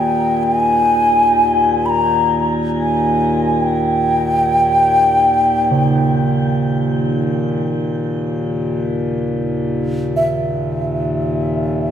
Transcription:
Already playing: harmonium D#2 A#2, xiao G5
0.43 xiao G#5
1.86 xiao A#5 B5
2.79 xiao G#5
3.51 xiao G5
5.71 singing bowl C#3
10.16 xiao E5

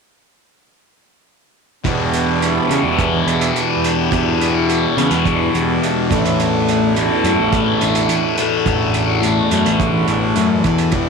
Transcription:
1.84 distorted electric guitar E2 B2 E3, picked electric bass E2, tanpura B2, harmonium B3 D4 E4 G4, kick, closed hi-hat
2.13 closed hi-hat
2.42 closed hi-hat
2.49 tanpura E3
2.69 distorted electric guitar E2 B2 E3, picked electric bass C#3, closed hi-hat
2.83 picked electric bass E2
2.99 kick, closed hi-hat
3.12 tanpura E3
3.27 picked electric bass E2, closed hi-hat
3.41 closed hi-hat
3.56 closed hi-hat
3.74 tanpura E2
3.84 closed hi-hat
4.11 distorted electric guitar E2 B2 E3, picked electric bass E2, kick, closed hi-hat
4.36 tanpura B2
4.41 closed hi-hat
4.69 closed hi-hat
4.97 distorted electric guitar E2 B2 E3, picked electric bass C#3, tanpura E3, closed hi-hat
5.11 picked electric bass E2, closed hi-hat
5.26 kick, closed hi-hat
5.54 picked electric bass E2, tanpura E3, closed hi-hat
5.83 closed hi-hat
6.10 picked electric bass A1, distorted electric guitar A2 E3 A3, harmonium A3 A4, kick, closed hi-hat
6.20 tanpura E2
6.25 closed hi-hat
6.40 closed hi-hat
6.69 closed hi-hat
6.84 tanpura B2
6.95 distorted electric guitar A2 E3 A3, closed hi-hat
7.24 picked electric bass F#2, closed hi-hat
7.39 picked electric bass A1
7.45 tanpura E3
7.53 kick, closed hi-hat
7.81 picked electric bass A1, closed hi-hat
7.95 closed hi-hat
8.07 tanpura E3, closed hi-hat
8.36 distorted electric guitar A2 E3 A3, harmonium F#4, closed hi-hat
8.66 picked electric bass A1, tanpura E2, kick, closed hi-hat
8.94 closed hi-hat
9.22 distorted electric guitar A2 E3 A3, closed hi-hat
9.30 tanpura B2
9.51 picked electric bass F#2, closed hi-hat
9.66 picked electric bass A1, closed hi-hat
9.80 kick, closed hi-hat
9.91 tanpura E3
10.08 picked electric bass A1, closed hi-hat
10.36 picked electric bass F#2, closed hi-hat
10.55 tanpura E3
10.64 picked electric bass E2, kick, closed hi-hat
10.78 closed hi-hat
10.92 picked electric bass E1, distorted electric guitar E2 B2, harmonium B3 D4 E4 G4, kick, closed hi-hat
10.96 distorted electric guitar E3

